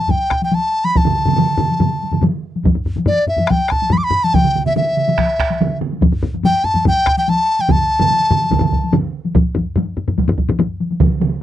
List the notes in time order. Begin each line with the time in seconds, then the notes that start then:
Already playing: A5
0.08 G5, taiko, taiko low-mid, taiko high
0.30 taiko rim, taiko
0.42 G5, taiko high
0.52 A5, taiko high
0.84 B5, taiko high
0.95 A5, taiko, taiko high
1.05 taiko low-mid, taiko mid
1.26 taiko low-mid, taiko mid, taiko high
1.37 taiko low-mid, taiko mid, taiko high
1.58 taiko low-mid, taiko mid
1.70 taiko high
1.80 taiko low-mid, taiko mid, taiko high
2.03 taiko high
2.12 taiko low-mid, taiko mid, taiko high
2.22 taiko low-mid, taiko mid, taiko high
2.56 taiko high
2.63 taiko, taiko low-mid, taiko high
2.75 taiko low-mid
2.86 taiko low-mid
2.96 taiko low-mid, taiko high
3.06 D5, taiko low-mid, taiko high
3.27 E5, taiko low-mid
3.37 taiko low-mid, taiko high
3.47 G5, taiko rim, taiko, taiko high
3.69 A5, taiko rim, taiko
3.82 taiko high
3.90 B5, taiko low-mid, taiko high
3.98 D6
4.04 B5
4.10 taiko low-mid
4.24 A5, taiko high
4.34 G5, taiko, taiko mid, taiko high
4.44 taiko mid
4.56 taiko mid
4.66 E5, taiko mid, taiko high
4.76 E5, taiko mid, taiko high
4.97 taiko mid
5.08 taiko mid, taiko high
5.18 taiko rim, taiko, taiko high
5.39 taiko rim, taiko
5.50 taiko high
5.61 taiko mid, taiko high
5.81 taiko mid
5.92 taiko high
6.01 taiko, taiko low-mid, taiko high
6.12 taiko low-mid
6.23 taiko low-mid
6.34 taiko high
6.43 G5, taiko low-mid, taiko high
6.64 A5, taiko low-mid
6.75 taiko low-mid, taiko high
6.85 G5, taiko, taiko low-mid, taiko high
7.06 taiko rim, taiko
7.18 G5, taiko high
7.28 A5, taiko high
7.59 G5, taiko high
7.68 A5, taiko, taiko low-mid, taiko mid, taiko high
7.99 taiko low-mid, taiko mid, taiko high
8.11 taiko high
8.31 taiko low-mid, taiko mid
8.42 taiko high
8.51 taiko, taiko low-mid, taiko mid, taiko high
8.61 taiko low-mid, taiko mid
8.73 taiko, taiko high
8.84 taiko high
8.93 taiko low-mid, taiko mid, taiko high
9.25 taiko high
9.35 taiko, taiko low-mid, taiko high
9.55 taiko low-mid, taiko high
9.76 taiko low-mid, taiko high
9.97 taiko low-mid
10.08 taiko low-mid, taiko high
10.18 taiko, taiko high
10.28 taiko low-mid
10.38 taiko, taiko high
10.49 taiko low-mid, taiko high
10.59 taiko low-mid, taiko high
10.80 taiko high
10.91 taiko high
11.00 taiko, taiko mid, taiko high
11.20 taiko mid, taiko high